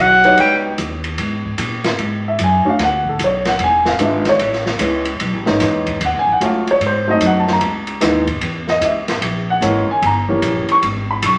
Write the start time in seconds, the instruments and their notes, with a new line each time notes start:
Already playing: upright bass B1
0.00 baritone saxophone F#3, clarinet F#5
0.24 grand piano B3 D#4 F#4 G4 C#5, ride
0.37 upright bass C#2, baritone saxophone G3, clarinet G5, ride
0.78 upright bass D#2, hi-hat pedal, ride
1.04 ride
1.18 upright bass G#2, ride
1.44 kick
1.58 upright bass A#2, hi-hat pedal, ride
1.84 snare, ride
1.98 upright bass G#2, ride
2.28 grand piano E5
2.39 upright bass F#2, hi-hat pedal, ride
2.44 grand piano G#5
2.65 grand piano A3 C#4 D4 F#4
2.69 grand piano F5
2.79 upright bass D2, snare, ride
2.84 grand piano F#5
3.05 grand piano A4, kick
3.19 upright bass B1, hi-hat pedal, ride
3.24 grand piano C#5
3.45 grand piano F#5, snare, ride
3.59 upright bass E1, ride
3.64 grand piano G#5
3.85 grand piano F5, snare
3.99 upright bass G#1, grand piano G#3 B3 D4 F4, hi-hat pedal, ride
4.03 grand piano E5
4.25 snare, ride
4.29 grand piano C#5
4.39 upright bass A1, ride
4.53 snare
4.66 snare
4.79 upright bass C#2, grand piano G#3 B3 C#4 E4, hi-hat pedal, ride
5.05 ride
5.20 upright bass B1, ride
5.34 upright bass A1
5.46 upright bass G#1, grand piano G#3 B3 C#4 D#4, snare
5.60 upright bass E2, snare, hi-hat pedal, ride
5.87 kick, ride
6.01 upright bass D#2, ride
6.05 grand piano F#5
6.14 upright bass C#2
6.19 grand piano G#5
6.27 upright bass A1
6.33 grand piano F#5
6.41 upright bass C#2, grand piano F#3 A3 C#4 F4, hi-hat pedal, ride
6.45 grand piano F5
6.67 grand piano C#5, ride
6.80 upright bass G#2, ride
6.86 grand piano C5
7.07 grand piano F#3 A3 C4 D#4 D#5
7.20 upright bass F#2, hi-hat pedal, ride
7.26 grand piano F#5
7.40 grand piano A5
7.47 snare
7.53 grand piano A#5
7.60 upright bass C#2, ride
7.87 ride
8.01 upright bass D#2, grand piano E3 G#3 B3 D#4, snare, hi-hat pedal, ride
8.27 kick, ride
8.41 upright bass E2, ride
8.68 grand piano D#5, snare
8.81 upright bass C#2, grand piano D#5, hi-hat pedal, ride
8.85 grand piano E5
9.08 snare, ride
9.21 upright bass A#1, ride
9.50 grand piano F#5
9.61 upright bass G#1, grand piano E3 G#3 A#3 C#4, hi-hat pedal, ride
9.88 grand piano G#5, muted upright bass stroke
10.02 upright bass G1, ride
10.06 grand piano A#5
10.28 grand piano E3 G3 A#3 C#4
10.42 upright bass A#1, hi-hat pedal, ride
10.69 grand piano C#6, muted upright bass stroke, ride
10.83 upright bass G#1, ride
11.11 grand piano B5
11.22 upright bass B1, grand piano C#6, hi-hat pedal, ride